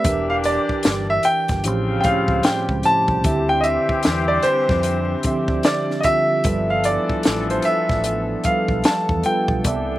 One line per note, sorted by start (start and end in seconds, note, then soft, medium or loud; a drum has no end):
0.00 1.29 E3 medium
0.00 0.25 E5 loud
0.04 0.56 E1 loud
0.04 1.63 E3 medium
0.04 1.22 E3 medium
0.04 1.63 D4 medium
0.04 1.22 D4 medium
0.04 1.29 D4 medium
0.04 6.40 G4 medium
0.04 1.22 G4 medium
0.04 1.29 G4 medium
0.04 1.30 A#4 medium
0.04 kick loud
0.04 closed hi-hat medium
0.30 0.35 F5 medium
0.44 1.06 D5 medium
0.44 closed hi-hat medium
0.69 muted fingered electric bass stroke soft
0.69 kick medium
0.83 1.17 G1 loud
0.83 snare loud
0.83 closed hi-hat medium
1.10 1.25 E5 loud
1.23 1.99 G5 loud
1.23 closed hi-hat medium
1.48 1.67 G1 loud
1.48 kick loud
1.48 snare soft
1.48 closed hi-hat soft
1.64 1.98 A1 loud
1.64 1.98 A2 medium
1.64 2.82 C#3 medium
1.64 3.23 C#3 medium
1.64 1.98 F3 medium
1.64 9.61 G3 medium
1.64 2.82 C4 medium
1.64 1.99 C#4 medium
1.64 2.82 F4 medium
1.64 1.99 G4 medium
1.64 1.99 C5 medium
1.64 closed hi-hat medium
2.01 2.70 A2 medium
2.01 2.70 F3 medium
2.01 2.46 F5 medium
2.01 2.05 G5 medium
2.01 closed hi-hat medium
2.05 2.13 C4 medium
2.05 2.71 G4 medium
2.05 2.71 C5 medium
2.05 muted fingered electric bass stroke soft
2.05 kick loud
2.12 2.74 C#4 medium
2.28 2.42 C#2 medium
2.28 kick medium
2.43 2.86 G5 medium
2.43 muted fingered electric bass stroke medium
2.43 snare loud
2.43 closed hi-hat medium
2.69 2.82 C#2 medium
2.69 kick medium
2.83 3.17 A2 medium
2.83 3.17 F3 medium
2.83 3.18 C#4 medium
2.83 3.18 G4 medium
2.83 3.18 C5 medium
2.83 3.46 A5 loud
2.83 closed hi-hat medium
3.08 3.22 C2 medium
3.08 kick medium
3.23 3.76 D2 loud
3.23 4.48 D3 medium
3.23 6.01 E3 medium
3.23 4.49 C4 medium
3.23 6.41 C4 medium
3.23 6.01 C4 medium
3.23 9.60 D4 medium
3.23 4.49 E4 medium
3.23 6.01 G4 medium
3.23 4.49 G4 medium
3.23 4.50 E5 medium
3.23 kick loud
3.23 closed hi-hat medium
3.49 3.59 G5 loud
3.61 3.65 D#5 medium
3.61 4.30 E5 medium
3.61 closed hi-hat medium
3.89 muted fingered electric bass stroke soft
3.89 kick medium
4.03 4.38 E2 medium
4.03 snare loud
4.03 closed hi-hat medium
4.28 4.44 D5 medium
4.43 5.67 C5 loud
4.43 closed hi-hat medium
4.69 5.14 F2 medium
4.69 kick loud
4.69 snare soft
4.83 closed hi-hat medium
5.23 5.90 D3 medium
5.23 5.91 F3 medium
5.23 5.91 C4 medium
5.23 5.91 G4 medium
5.23 5.92 E5 medium
5.23 muted fingered electric bass stroke soft
5.23 kick medium
5.23 closed hi-hat medium
5.48 5.62 D2 medium
5.48 kick medium
5.63 6.00 D5 medium
5.63 snare loud
5.63 closed hi-hat medium
5.91 snare soft
6.01 6.05 D#5 medium
6.01 6.71 E5 loud
6.01 kick medium
6.01 closed hi-hat medium
6.05 6.38 D3 medium
6.05 6.38 C4 medium
6.05 6.38 F4 medium
6.05 6.39 G4 medium
6.05 6.39 E5 medium
6.44 6.97 G1 loud
6.44 9.21 E3 medium
6.44 9.21 F3 medium
6.44 7.69 F3 medium
6.44 7.69 G3 medium
6.44 9.99 B3 medium
6.44 9.21 A4 medium
6.44 9.99 A4 medium
6.44 7.70 A4 medium
6.44 7.70 B4 medium
6.44 7.70 E5 medium
6.44 kick loud
6.44 closed hi-hat medium
6.70 6.85 F5 medium
6.84 7.45 D5 medium
6.84 closed hi-hat medium
7.09 muted fingered electric bass stroke soft
7.09 kick medium
7.23 snare loud
7.23 closed hi-hat medium
7.27 7.58 A1 loud
7.50 7.66 C5 medium
7.50 closed hi-hat soft
7.62 8.47 E5 loud
7.62 closed hi-hat medium
7.89 8.34 A1 medium
7.89 kick loud
7.89 snare soft
8.04 closed hi-hat medium
8.44 9.11 F3 medium
8.44 9.11 G3 medium
8.44 9.11 A4 medium
8.44 9.11 B4 medium
8.44 8.86 F5 medium
8.44 9.12 F5 medium
8.44 muted fingered electric bass stroke soft
8.44 kick medium
8.44 closed hi-hat medium
8.68 8.82 B1 medium
8.68 kick medium
8.84 9.22 A5 medium
8.84 snare loud
8.84 closed hi-hat medium
8.88 muted fingered electric bass stroke soft
9.09 9.22 E2 medium
9.09 kick medium
9.23 9.58 G3 medium
9.23 9.58 F4 medium
9.23 9.58 A4 medium
9.23 9.59 B4 medium
9.23 9.99 G5 medium
9.23 closed hi-hat medium
9.27 9.59 G5 medium
9.48 9.62 B1 medium
9.48 kick loud
9.64 9.99 C2 loud
9.64 9.99 C3 medium
9.64 9.99 E3 medium
9.64 9.99 B3 medium
9.64 9.99 D4 medium
9.64 9.99 G4 medium
9.64 9.99 A4 medium
9.64 9.99 D5 medium
9.64 9.99 E5 medium
9.64 kick loud
9.64 closed hi-hat medium